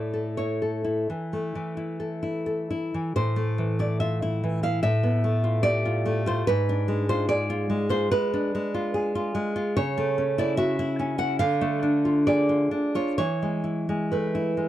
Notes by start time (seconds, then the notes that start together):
Already playing: A2 A3 E4 D5
0.14 A4
0.37 E4 C#5
0.62 A4
0.84 E4
1.10 E3
1.33 A3
1.55 E3
1.77 E4
2.00 A4
2.23 E4
2.46 A4
2.70 E4
2.94 E3
3.16 A2 C5
3.36 A3
3.58 E3
3.79 E4 D5
4.00 F4 E5
4.22 E4
4.44 E3
4.63 E4 F5
4.83 A2 E5
5.03 B3
5.24 A3
5.44 F4
5.63 G4 D5
5.85 F4
6.05 A3
6.26 F4 C5
6.47 G#2 B4
6.69 D4
6.88 G#3
7.09 F4 C5
7.29 G#4 D5
7.50 F4
7.70 G#3
7.89 F4 C5
8.11 G#3 B4
8.34 D4
8.55 G#3
8.74 F4
8.94 G#4
9.15 F4
9.35 G#3
9.56 F4
9.77 C#3 C#5
9.97 A3
10.18 C#4
10.38 E4 D5
10.57 F#4 E5
10.79 E4
10.99 C#4
11.18 E4 F#5
11.39 D3 F5
11.61 A3
11.83 D4
12.05 F4
12.27 G#4 D5
12.49 F4
12.71 D4
12.95 F4 C#5
13.18 E3 C#5
13.42 G#3
13.64 E4
13.89 G#3
14.12 A3 B4
14.35 E4
14.57 G#3